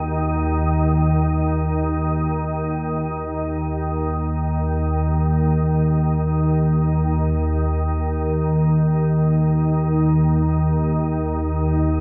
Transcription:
Already playing: D#2 D#3 D#4 A#4 F5 F#5
3.25 D#2 D#3

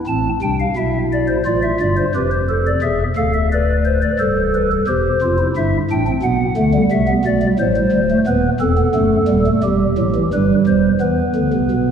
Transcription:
0.07 A1 A2 C4 A5
0.42 C2 C3 D4 G5
0.59 F5
0.77 B1 B2 E4 E5
1.12 D5
1.28 C5
1.46 A1 A2 F4 D5
1.63 E5
1.80 G1 G2 D5
1.96 C5
2.15 F1 F2 G4 B4
2.31 C5
2.49 A4
2.66 D5
2.82 E1 E2 G#4 E5
3.16 D1 D2 A4 F5
3.34 E5
3.52 B4 D5
3.85 C5
4.02 D5
4.19 C1 C2 A4 C5
4.54 B4
4.72 A4
4.87 E1 E2 G4 C5
5.21 F1 F2 F4
5.39 E4
5.56 G1 G2 E4 E5
5.91 A1 A2 D4 G5
6.07 C4
6.23 B1 B2 B3 F#5
6.57 D2 D3 A3
6.74 G3
6.91 C2 C3 A3 E5
7.08 B3
7.25 B1 B2 A3 D5
7.42 G3
7.59 A1 A2 F#3 C5
7.77 G3
7.92 D1 D2
8.10 A3
8.27 D#1 D#2 B3 B4
8.60 E1 E2 C4 A4
8.78 B3
8.95 F#1 F#2 A3
9.28 D#1 D#2 G3
9.46 A3
9.63 E1 E2 G3 G4
9.98 A1 A2 F#3
10.15 E3
10.33 G1 G2 G3 B4
10.67 E1 E2 C5
11.01 E2 E3 B3 B4
11.35 D2 D3
11.53 C2 C3
11.71 B1 B2

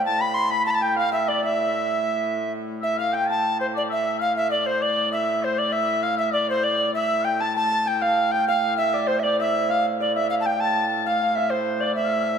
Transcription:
Already playing: C5 D5 F5 G5
0.05 A2 A5
0.20 B5
0.34 C6
0.50 B5
0.66 A5
0.70 A5 B5
0.75 A5
0.81 G5
0.96 F5
1.12 E5
1.27 D5
1.43 E5
2.81 E5
2.97 F5
3.12 G5
3.27 A5
3.58 C5
3.74 A2 D5
3.90 E5
4.05 E5
4.19 F5
4.37 E5
4.50 D5
4.66 C5
4.81 D5
5.12 E5
5.42 C5
5.58 D5
5.72 E5
6.03 F5
6.18 E5
6.33 D5
6.50 C5
6.64 D5
6.94 E5
7.25 G5
7.40 A2 A5
7.56 A5
7.72 A5
7.86 G5
8.01 F5
8.32 G5
8.48 F5
8.78 E5
8.93 D5
9.07 C5
9.19 D5 E5
9.24 D5
9.40 E5
9.55 E5
9.69 F5
10.00 D5
10.15 E5
10.30 F5
10.41 A5
10.45 G5
10.60 A5
11.06 A2 F5
11.21 F5
11.35 E5
11.50 C5
11.81 D5
11.95 E5
12.05 F5
12.13 E5
12.21 F5
12.29 E5

